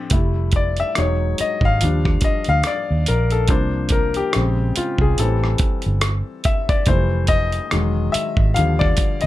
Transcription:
Already playing: grand piano F3 C4 D4 G4 A4 F5
0.10 fingered electric bass F1, grand piano G3 A3 E4, kick, closed hi-hat
0.52 kick, closed hi-hat
0.56 grand piano D5
0.77 grand piano E5, closed hi-hat
0.95 fingered electric bass E1, grand piano F#3 G#3 D#4 C#5, cross-stick, closed hi-hat
1.38 grand piano D#5, muted fingered electric bass stroke, closed hi-hat
1.61 fingered electric bass G#1, kick
1.65 grand piano F5
1.81 fingered electric bass D#2, grand piano F3 G3 D4, closed hi-hat
2.05 kick, cross-stick
2.21 grand piano D#5, muted fingered electric bass stroke, kick, closed hi-hat
2.44 fingered electric bass D2, closed hi-hat
2.49 grand piano F5
2.64 grand piano D5, cross-stick, closed hi-hat
2.91 fingered electric bass D#2
3.06 fingered electric bass A#1, grand piano A#4, closed hi-hat
3.31 grand piano A4, closed hi-hat
3.48 fingered electric bass C2, grand piano F3 A#3 D4 C5, kick, closed hi-hat
3.89 grand piano A#4, kick, closed hi-hat
4.14 grand piano G4, closed hi-hat
4.33 fingered electric bass A#1, grand piano C#3 G#3 C4, cross-stick, closed hi-hat
4.76 grand piano F4, muted fingered electric bass stroke, closed hi-hat
4.98 fingered electric bass C2, grand piano G#4, kick
5.18 fingered electric bass A1, grand piano E3 G3 C4 A4, closed hi-hat
5.44 cross-stick
5.58 muted fingered electric bass stroke, kick, closed hi-hat
5.82 closed hi-hat
5.86 fingered electric bass G1
6.01 cross-stick, closed hi-hat
6.44 grand piano E5, kick, closed hi-hat
6.69 grand piano D5, kick, closed hi-hat
6.86 fingered electric bass F1, grand piano E3 G3 A3 C5, kick, closed hi-hat
7.27 grand piano D#5, kick, closed hi-hat
7.52 closed hi-hat
7.71 fingered electric bass E1, grand piano D#3 F#3 G#3, cross-stick, closed hi-hat
8.12 grand piano E5, muted fingered electric bass stroke, closed hi-hat
8.37 fingered electric bass G#1, kick
8.54 fingered electric bass D#2, grand piano D3 F3 G3 F5, closed hi-hat
8.79 grand piano D5, kick, cross-stick
8.97 muted fingered electric bass stroke, kick, closed hi-hat
9.21 grand piano D#5, closed hi-hat

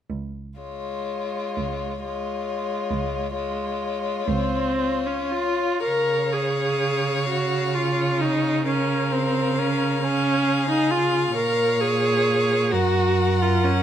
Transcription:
0.10 cello C#2
0.59 viola G#3, violin F4 C#5
1.58 cello C#2
2.04 viola G#3, violin F4 C#5
2.91 cello C#2
3.35 viola G#3, violin F4 C#5
4.28 cello C#2, viola C4
4.79 violin F4 C#5
5.06 viola C#4
5.32 viola F4
5.83 cello C#3, viola A#4, violin C#5 F5
6.33 viola G#4
7.29 viola F#4
7.75 viola F4
8.21 viola D#4
8.67 viola C#4, violin A#4 F5
9.12 viola C4
9.59 viola C#4
10.03 viola C#4, violin G#4
10.70 viola D#4
10.91 viola F4
11.36 cello A#2, viola A#4, violin C#5
11.81 viola G#4
12.71 cello F#2, viola F#4, violin A#4 F#5
13.41 viola F4
13.64 viola C#4

